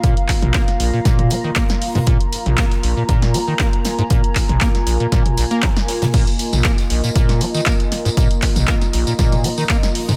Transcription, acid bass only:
0.04 0.15 A#2 loud
0.42 0.52 A#1 medium
0.54 0.62 A#3 loud
0.80 0.91 A#1 medium
0.93 1.00 A#2 medium
1.05 1.32 A#2 loud
1.31 1.35 G#3 loud
1.44 1.51 D#3 medium
1.56 1.64 A#3 loud
1.95 1.99 G#2 loud
2.07 2.18 A#2 loud
2.46 2.56 A#1 medium
2.58 2.65 A#3 loud
2.83 2.94 A#1 medium
2.97 3.03 A#2 medium
3.09 3.36 A#2 loud
3.34 3.39 G#3 loud
3.48 3.54 D#3 medium
3.60 3.67 A#3 loud
3.98 4.02 G#2 loud
4.10 4.22 A#2 loud
4.49 4.59 A#1 medium
4.61 4.69 A#3 loud
4.87 4.98 A#1 medium
5.00 5.07 A#2 medium
5.12 5.23 A#2 loud
5.38 5.45 A#1 medium
5.51 5.64 A#3 loud
5.63 5.70 F3 loud
6.02 6.06 A#2 loud
6.14 6.25 A#2 loud
6.53 6.63 A#1 medium
6.65 6.72 A#3 loud
6.90 7.01 A#1 medium
7.04 7.10 A#2 medium
7.16 7.42 A#2 loud
7.41 7.45 G#3 loud
7.54 7.61 D#3 medium
7.66 7.74 A#3 loud
8.05 8.09 G#2 loud
8.17 8.28 A#2 loud
8.56 8.66 A#1 medium
8.68 8.75 A#3 loud
8.93 9.05 A#1 medium
9.07 9.14 A#2 medium
9.19 9.46 A#2 loud
9.44 9.49 G#3 loud
9.58 9.64 D#3 medium
9.70 9.77 A#3 loud
10.09 10.13 G#2 loud

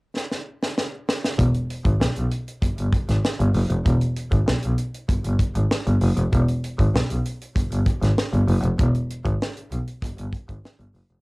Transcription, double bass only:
1.39 1.47 E1 medium
1.85 1.93 G#1 medium
2.01 2.06 B1 soft
2.17 2.25 B1 medium
2.62 2.67 G1 soft
2.79 2.87 G1 medium
3.09 3.17 G#1 medium
3.40 3.48 G1 medium
3.55 3.63 F#1 medium
3.71 3.79 F1 medium
3.86 3.94 E1 loud
4.32 4.40 G#1 medium
4.48 4.53 B1 medium
4.64 4.72 B1 medium
5.09 5.14 G1 soft
5.25 5.33 G1 medium
5.56 5.64 G#1 medium
5.87 5.95 G1 medium
6.02 6.10 F#1 medium
6.17 6.25 F1 medium
6.33 6.41 E1 loud
6.79 6.87 G#1 medium
6.95 7.00 B1 soft
7.10 7.18 B1 medium
7.56 7.61 G1 soft
7.71 7.79 G1 medium
8.02 8.10 G#1 medium
8.33 8.41 G1 medium
8.48 8.56 F#1 loud
8.64 8.72 F1 medium
8.79 8.87 E1 loud
9.25 9.33 G#1 medium
9.71 9.79 B1 medium
10.03 10.08 G1 soft
10.18 10.26 G1 medium
10.49 10.57 G#1 medium
10.80 10.88 G1 medium
10.95 11.03 F#1 medium
11.11 11.19 F1 medium

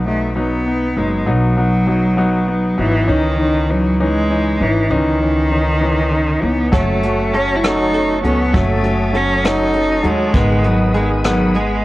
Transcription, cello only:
0.07 0.35 A3 medium
0.37 1.00 B3 medium
0.98 1.32 G#3 medium
1.31 2.81 F#3 medium
2.79 3.11 E3 medium
3.10 3.72 D#3 medium
3.71 4.02 F#3 medium
4.01 4.64 G#3 medium
4.62 4.93 E3 medium
4.92 6.45 D#3 medium
6.44 6.74 B3 medium
6.75 7.35 A3 medium
7.33 7.58 C#4 medium
7.56 7.65 E4 medium
7.63 8.23 D#4 medium
8.24 8.57 B3 medium
8.55 9.17 A3 medium
9.16 9.46 C#4 medium
9.45 10.06 D#4 medium
10.05 10.67 G#3 medium
10.65 10.95 F#3 medium
10.95 11.09 G#3 medium
11.25 11.56 F#3 medium
11.55 11.85 G#3 medium

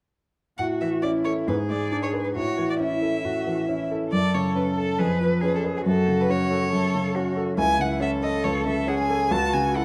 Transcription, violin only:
0.58 0.66 F#5 medium
0.81 0.89 E5 soft
1.02 1.10 D5 medium
1.25 1.33 C#5 medium
1.48 1.56 B4 medium
1.70 1.91 D5 soft
1.91 1.96 D5 medium
2.03 2.11 C#5 medium
2.24 2.29 B4 soft
2.35 2.68 C#5 medium
2.70 2.74 D5 medium
2.80 3.89 E5 medium
4.12 4.36 D5 medium
4.34 4.55 C#5 medium
4.56 4.64 B4 medium
4.77 5.01 A4 medium
5.00 5.20 G#4 medium
5.21 5.29 B4 medium
5.43 5.54 B4 medium
5.55 5.63 A4 medium
5.77 5.81 G#4 medium
5.87 6.22 A4 medium
6.21 6.32 B4 medium
6.31 7.38 C#5 medium
7.59 7.82 G#5 medium
7.81 8.01 F#5 medium
8.02 8.10 E5 medium
8.23 8.45 D#5 medium
8.44 8.66 C#5 medium
8.66 8.90 E5 medium
8.88 8.98 F#5 medium
8.98 9.33 G#5 medium
9.32 9.55 A5 medium
9.53 9.77 G#5 medium
9.76 9.85 F#5 medium

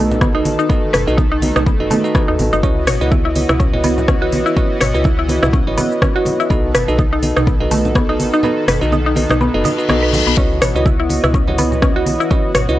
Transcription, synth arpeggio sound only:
0.21 0.29 B3 loud
0.35 0.40 D#4 loud
0.59 0.69 D#4 loud
0.69 0.77 B3 medium
0.93 1.07 B4 loud
1.18 1.30 D#4 medium
1.32 1.37 D#4 loud
1.56 1.66 D#4 loud
1.66 1.74 B3 medium
1.91 2.03 A3 loud
2.15 2.22 B3 loud
2.28 2.34 D#4 loud
2.53 2.63 D#4 loud
2.63 2.71 C#4 medium
2.87 3.01 C#5 loud
3.11 3.24 E4 medium
3.25 3.31 E4 loud
3.49 3.59 E4 loud
3.60 3.67 C#4 medium
3.84 3.96 B3 loud
4.08 4.16 C#4 loud
4.22 4.28 F#4 loud
4.46 4.56 E4 loud
4.57 4.64 C#4 medium
4.81 4.94 C#5 loud
5.05 5.17 E4 medium
5.19 5.24 E4 loud
5.43 5.53 E4 loud
5.53 5.61 C#4 medium
5.78 5.90 B3 loud
6.02 6.09 C#4 loud
6.16 6.21 F#4 loud
6.40 6.50 E4 loud
6.51 6.58 B3 medium
6.75 6.88 B4 loud
6.99 7.11 D#4 medium
7.13 7.18 D#4 loud
7.37 7.47 D#4 loud
7.47 7.55 B3 medium
7.71 7.84 A3 loud
7.96 8.03 B3 loud
8.09 8.15 D#4 loud
8.34 8.43 D#4 loud
8.44 8.51 B3 medium
8.68 8.81 B4 loud
8.93 9.05 D#4 medium
9.06 9.12 D#4 loud
9.30 9.40 D#4 loud
9.41 9.48 B3 medium
9.65 9.72 D#4 medium
9.89 10.02 B3 medium
10.03 10.08 B4 medium
10.27 10.36 B3 medium
10.38 10.45 C#4 medium
10.62 10.75 C#5 loud
10.86 10.98 E4 medium
11.00 11.05 E4 loud
11.24 11.34 E4 loud
11.34 11.42 C#4 medium
11.59 11.71 B3 loud
11.82 11.90 C#4 loud
11.96 12.02 F#4 loud
12.20 12.30 E4 loud
12.31 12.38 C#4 medium
12.55 12.68 C#5 loud

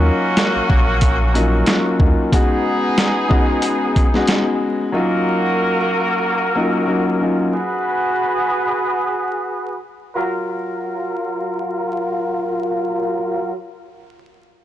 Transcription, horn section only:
0.00 1.96 A#3 medium
0.00 1.96 C#4 medium
0.00 1.96 F#4 medium
2.33 4.57 B3 medium
2.33 4.57 D#4 medium
2.33 4.57 G#4 medium
4.93 7.18 A#3 medium
4.93 7.18 F#4 medium
4.93 7.18 A#4 medium
7.54 9.78 F#4 medium
7.54 9.78 G#4 medium
7.54 9.78 B4 medium
10.15 13.52 F#3 medium
10.15 13.52 F4 medium
10.15 13.52 A#4 medium

